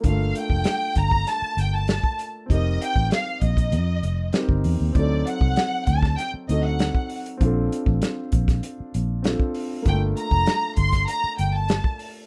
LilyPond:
<<
  \new Staff \with { instrumentName = "Violin section" } { \time 4/4 \key g \minor \tempo 4 = 98 f''8 g''4 bes''8 a''8 g''16 a''8. r8 | ees''8 g''8 f''8 ees''4. r4 | d''8 fis''4 a''8 g''8 ees''16 fis''8. r8 | r1 |
g''8 bes''4 c'''8 bes''8 g''16 a''8. r8 | }
  \new Staff \with { instrumentName = "Grand piano" } { \time 4/4 \key g \minor <a bes d' f'>1 | <c' ees' g' bes'>2. <c' ees' g' bes'>4 | <fis c' ees' a'>2~ <fis c' ees' a'>8 <c' ees' fis' a'>4. | <c' d' f' a'>2. <c' d' f' a'>4 |
<a bes d' f'>1 | }
  \new Staff \with { instrumentName = "Fingered electric bass" } { \clef bass \time 4/4 \key g \minor g,,8 r16 f,,16 r8 g,,8 r8 g,,8. r8. | f,,8 r16 a,,16 r8 bes,,8 f,8 f,,8 r16 g,,16 e,16 ees,16 | d,8 r16 c,16 r8 d,8 r8 d,8. r8. | bes,,8 r16 a,,16 r8 bes,,8 r8 bes,,8. r8. |
g,,8 r16 f,,16 r8 g,,8 r8 g,,8. r8. | }
  \new DrumStaff \with { instrumentName = "Drums" } \drummode { \time 4/4 <hh bd>8 hh16 bd16 <hh sn>8 <hh bd>16 bd16 <hh sn>8 hh8 <hh sn>16 bd16 hh8 | <hh bd>8 hh16 bd16 <hh sn>8 <hh bd>16 <hh bd>16 hh8 hh8 <hh sn>16 bd16 hho8 | <hh bd>8 hh16 bd16 <hh sn>8 <hh bd>16 <bd sn>16 <hh sn>8 hh8 <hh sn>16 bd16 hho16 hh16 | <hh bd>8 hh16 bd16 <hh sn>8 <hh bd>16 <hh bd sn>16 hh8 hh8 <hh sn>16 bd16 hho8 |
<hh bd>8 hh16 bd16 <hh sn>8 <hh bd>16 <hh bd sn>16 hh8 hh8 <hh sn>16 bd16 hho8 | }
>>